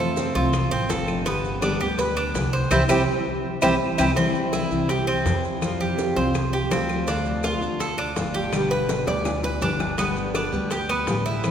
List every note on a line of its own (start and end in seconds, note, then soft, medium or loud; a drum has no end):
0.00 0.29 F2 medium
0.00 0.15 C3 medium
0.00 0.16 F3 medium
0.00 0.16 A3 medium
0.00 0.17 C4 medium
0.00 0.17 F4 medium
0.00 0.34 A4 medium
0.17 0.34 C3 medium
0.17 0.35 F3 medium
0.17 0.35 A3 medium
0.17 0.34 C4 medium
0.17 0.34 F4 medium
0.17 high bongo medium
0.17 high conga loud
0.17 maracas medium
0.35 0.69 C2 medium
0.35 0.52 F3 medium
0.35 0.52 A3 medium
0.35 0.52 C4 medium
0.35 0.52 F4 medium
0.35 0.70 F4 medium
0.35 high bongo soft
0.35 high conga medium
0.35 maracas soft
0.53 muted steel-string acoustic guitar stroke medium
0.53 high bongo medium
0.53 high conga soft
0.53 claves medium
0.53 maracas medium
0.71 0.88 A1 medium
0.71 0.89 C4 medium
0.71 high bongo soft
0.71 high conga soft
0.71 maracas soft
0.89 1.75 G1 medium
0.89 1.25 F3 medium
0.89 1.25 A3 medium
0.89 1.26 C4 medium
0.89 1.26 F4 medium
0.89 1.25 A4 medium
0.89 high bongo medium
0.89 low bongo medium
0.89 high conga medium
0.89 maracas medium
1.08 high bongo soft
1.08 high conga medium
1.08 claves medium
1.08 maracas soft
1.25 1.60 D3 medium
1.25 1.61 G3 medium
1.25 1.61 B3 medium
1.25 1.62 G4 medium
1.25 high bongo medium
1.25 maracas medium
1.44 high conga soft
1.44 maracas soft
1.61 1.79 D3 medium
1.61 1.80 G3 medium
1.61 1.80 B3 medium
1.61 1.80 D4 medium
1.61 1.79 G4 medium
1.61 high bongo medium
1.61 high conga medium
1.61 claves medium
1.61 maracas medium
1.80 2.31 D2 medium
1.80 1.98 G3 medium
1.80 1.98 B3 medium
1.80 1.98 G4 medium
1.80 high conga soft
1.80 maracas soft
1.99 2.16 B4 medium
1.99 muted steel-string acoustic guitar stroke medium
1.99 high bongo medium
1.99 high conga soft
1.99 maracas medium
2.17 2.52 D4 medium
2.17 high conga soft
2.17 claves medium
2.17 maracas soft
2.34 2.68 C2 medium
2.34 2.70 D3 medium
2.34 2.70 G3 medium
2.34 2.71 B3 medium
2.34 2.71 G4 medium
2.34 high bongo medium
2.34 low bongo medium
2.34 high conga medium
2.34 maracas medium
2.53 2.71 C5 medium
2.53 maracas soft
2.71 2.85 C2 medium
2.71 2.83 E3 medium
2.71 2.83 G3 medium
2.71 2.83 C4 medium
2.71 2.83 E4 medium
2.71 2.83 G4 medium
2.71 low bongo medium
2.71 high conga loud
2.71 claves medium
2.71 maracas loud
2.89 3.03 C2 medium
2.89 3.01 E3 medium
2.89 3.01 G3 medium
2.89 3.01 C4 loud
2.89 3.01 C4 medium
2.89 3.01 E4 medium
2.89 3.01 G4 medium
2.89 low bongo loud
2.89 high conga medium
2.89 claves loud
2.89 maracas medium
3.62 3.75 C2 medium
3.62 3.74 E3 medium
3.62 3.74 G3 medium
3.62 3.74 C4 medium
3.62 3.74 E4 medium
3.62 3.74 G4 medium
3.62 low bongo medium
3.62 high conga loud
3.62 claves loud
3.62 maracas medium
3.98 4.12 C2 medium
3.98 4.10 E3 medium
3.98 4.10 G3 medium
3.98 4.10 C4 medium
3.98 4.10 E4 medium
3.98 4.10 G4 medium
3.98 low bongo loud
3.98 high conga medium
3.98 claves medium
3.98 maracas loud
4.16 4.70 E3 medium
4.16 4.72 G3 medium
4.16 4.52 C4 medium
4.16 4.72 C4 medium
4.16 4.70 E4 medium
4.16 high bongo medium
4.16 high conga soft
4.16 maracas medium
4.35 high conga soft
4.35 maracas soft
4.53 4.88 E4 medium
4.53 high bongo medium
4.53 high conga medium
4.53 claves medium
4.53 maracas medium
4.71 5.22 C2 medium
4.71 4.88 G3 soft
4.71 4.89 C4 medium
4.71 4.88 E4 medium
4.71 high conga soft
4.71 maracas soft
4.89 5.07 G4 medium
4.89 muted steel-string acoustic guitar stroke medium
4.89 high bongo medium
4.89 high conga soft
4.89 maracas medium
5.07 5.43 C4 medium
5.07 high conga soft
5.07 claves medium
5.07 maracas soft
5.25 6.10 F2 medium
5.25 5.61 E3 soft
5.25 5.61 G3 soft
5.25 5.62 C4 medium
5.25 5.62 E4 medium
5.25 high bongo medium
5.25 low bongo medium
5.25 high conga medium
5.25 maracas medium
5.44 maracas soft
5.61 6.21 F3 medium
5.61 6.16 G3 medium
5.61 6.16 C4 medium
5.61 6.16 F4 medium
5.61 high bongo medium
5.61 high conga soft
5.61 claves medium
5.61 maracas medium
5.81 6.16 G4 medium
5.81 high conga soft
5.81 maracas soft
5.98 high bongo medium
5.98 high conga medium
5.98 maracas medium
6.16 6.67 C2 medium
6.16 6.34 G3 medium
6.16 6.34 C4 medium
6.16 6.34 F4 medium
6.16 6.52 C5 medium
6.16 high bongo soft
6.16 high conga medium
6.16 maracas soft
6.34 muted steel-string acoustic guitar stroke medium
6.34 high bongo medium
6.34 high conga soft
6.34 claves medium
6.34 maracas medium
6.53 6.71 G4 medium
6.53 high bongo soft
6.53 high conga soft
6.53 maracas soft
6.70 7.56 D2 medium
6.70 7.06 F3 medium
6.70 7.07 G3 medium
6.70 7.06 C4 medium
6.70 7.07 C4 medium
6.70 7.07 F4 medium
6.70 high bongo medium
6.70 low bongo medium
6.70 high conga medium
6.70 maracas medium
6.89 high bongo soft
6.89 high conga medium
6.89 claves medium
6.89 maracas soft
7.07 7.61 D3 medium
7.07 7.61 A3 medium
7.07 7.43 D4 medium
7.07 7.62 D4 medium
7.07 7.60 F4 medium
7.07 high bongo medium
7.07 high conga soft
7.07 maracas medium
7.25 high conga soft
7.25 maracas soft
7.44 7.79 F4 medium
7.44 high bongo medium
7.44 high conga medium
7.44 claves medium
7.44 maracas medium
7.61 8.12 D2 medium
7.61 7.79 A3 medium
7.61 7.79 D4 medium
7.61 7.79 F4 medium
7.61 high conga soft
7.61 maracas soft
7.79 7.98 A4 medium
7.79 muted steel-string acoustic guitar stroke medium
7.79 high bongo medium
7.79 high conga soft
7.79 maracas medium
7.98 8.33 D4 medium
7.98 high conga soft
7.98 claves medium
7.98 maracas soft
8.15 9.01 G1 medium
8.15 8.51 D3 medium
8.15 8.52 A3 soft
8.15 8.52 D4 medium
8.15 8.53 F4 medium
8.15 high bongo medium
8.15 low bongo medium
8.15 high conga medium
8.15 maracas medium
8.34 8.70 G4 medium
8.34 high conga medium
8.34 maracas soft
8.52 9.06 B2 medium
8.52 9.06 D3 medium
8.52 9.08 G3 medium
8.52 9.07 B3 medium
8.52 9.06 G4 medium
8.52 high bongo medium
8.52 high conga soft
8.52 claves medium
8.52 maracas medium
8.71 9.06 B4 medium
8.71 high conga soft
8.71 maracas soft
8.89 high bongo loud
8.89 high conga medium
8.89 maracas medium
9.06 9.58 D2 medium
9.06 9.24 D3 medium
9.06 9.24 G3 medium
9.06 9.24 B3 medium
9.06 9.24 G4 medium
9.06 9.43 D5 medium
9.06 high bongo loud
9.06 high conga medium
9.06 maracas soft
9.25 muted steel-string acoustic guitar stroke medium
9.25 low bongo loud
9.25 high conga soft
9.25 claves medium
9.25 maracas medium
9.43 9.62 B4 medium
9.43 low bongo medium
9.43 high conga soft
9.43 maracas soft
9.61 10.47 G1 medium
9.61 9.97 D3 soft
9.61 9.97 G3 medium
9.61 9.98 B3 medium
9.61 9.97 D4 medium
9.61 9.98 G4 medium
9.61 low bongo medium
9.61 high conga medium
9.61 maracas medium
9.80 low bongo medium
9.80 high conga medium
9.80 claves medium
9.80 maracas soft
9.98 10.52 D3 medium
9.98 10.52 G3 medium
9.98 10.34 B3 medium
9.98 10.52 B3 medium
9.98 10.51 G4 medium
9.98 high bongo medium
9.98 high conga soft
9.98 maracas medium
10.16 high conga soft
10.16 maracas soft
10.34 10.70 D4 medium
10.34 high bongo medium
10.34 high conga medium
10.34 claves medium
10.34 maracas medium
10.52 11.03 D2 medium
10.52 10.70 G3 medium
10.52 10.70 B3 medium
10.52 10.70 G4 medium
10.52 high conga soft
10.52 maracas soft
10.71 10.89 G4 medium
10.71 muted steel-string acoustic guitar stroke medium
10.71 high bongo medium
10.71 high conga soft
10.71 maracas medium
10.89 11.25 B3 medium
10.89 high conga soft
10.89 claves medium
10.89 maracas soft
11.07 11.51 A1 medium
11.07 11.43 D3 soft
11.07 11.43 G3 medium
11.07 11.44 B3 soft
11.07 11.44 G4 medium
11.07 high bongo medium
11.07 low bongo medium
11.07 high conga medium
11.07 maracas medium
11.26 11.51 E4 medium
11.26 maracas soft
11.43 11.51 E3 medium
11.43 11.51 A3 medium
11.43 11.51 C4 medium
11.43 11.51 E4 medium
11.43 high bongo medium
11.43 high conga soft
11.43 claves medium
11.43 maracas medium